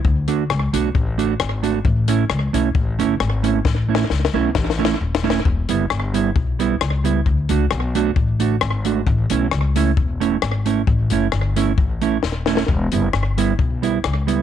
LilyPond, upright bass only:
\new Staff \with { instrumentName = "Upright bass" } { \clef bass \time 4/4 \key a \mixolydian \tempo 4 = 133 d,4 cis,8 b,,8 a,,4 gis,,4 | a,,4 cis,8 b,,8 a,,8 g,,8 gis,,4 | a,,4 cis,8 b,,8 a,,4 dis,,4 | e,,8 fis,,8 g,,4 b,,4 cis,4 |
d,8 cis,8 b,,4 a,,4 gis,,4 | a,,8 b,,8 cis,4 e,,4 gis,,4 | a,,8 fis,,8 g,,4 a,,4 dis,,4 | e,,8 fis,,8 g,,4 b,,4 cis,4 | }